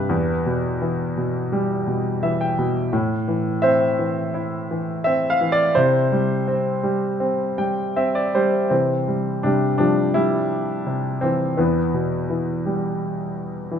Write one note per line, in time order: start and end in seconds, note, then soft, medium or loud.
0.00 0.12 G2 soft
0.00 0.12 C3 soft
0.00 0.12 E3 soft
0.00 1.14 G4 soft
0.00 0.41 B4 medium
0.00 0.12 E5 medium
0.09 2.88 E2 medium
0.46 1.16 B2 soft
0.82 2.19 E3 soft
1.18 1.86 B2 soft
1.52 2.89 G3 soft
1.87 2.57 B2 soft
2.23 2.91 E3 soft
2.23 2.39 E5 medium
2.41 2.90 G5 medium
2.59 2.92 B2 soft
2.93 5.71 A2 medium
3.28 3.97 E3 soft
3.62 5.01 C4 medium
3.62 5.01 C5 medium
3.62 5.03 E5 medium
3.99 4.69 E3 soft
4.34 5.72 E4 soft
4.71 5.39 E3 soft
5.04 5.74 C4 medium
5.04 5.29 E5 medium
5.30 5.53 F5 medium
5.41 5.75 E3 medium
5.52 5.74 D5 medium
5.75 8.68 C3 medium
5.75 7.91 E4 medium
5.75 7.91 C5 medium
6.12 6.82 G3 soft
6.48 7.19 C4 medium
6.83 7.56 G3 soft
7.20 7.95 C4 medium
7.58 8.34 G3 soft
7.58 7.93 G5 medium
7.96 8.68 C4 medium
7.96 8.14 E5 medium
8.15 8.33 D5 medium
8.35 8.71 G3 medium
8.35 8.69 C5 medium
8.70 9.43 C3 soft
8.70 9.40 E3 soft
8.70 9.45 C4 medium
9.08 9.44 G3 soft
9.43 10.83 C3 soft
9.43 9.77 G3 medium
9.43 9.76 D4 medium
9.78 10.13 F3 soft
9.78 10.14 G3 soft
9.78 10.15 D4 medium
10.14 11.19 G3 medium
10.14 11.25 E4 medium
10.86 11.56 C3 soft
11.21 11.56 E3 soft
11.21 11.59 C4 medium
11.57 13.79 E2 soft
11.57 12.28 E3 soft
11.57 12.96 B3 medium
11.94 13.33 B2 soft
12.30 13.68 E3 soft
12.66 13.79 G3 soft
13.71 13.79 E3 soft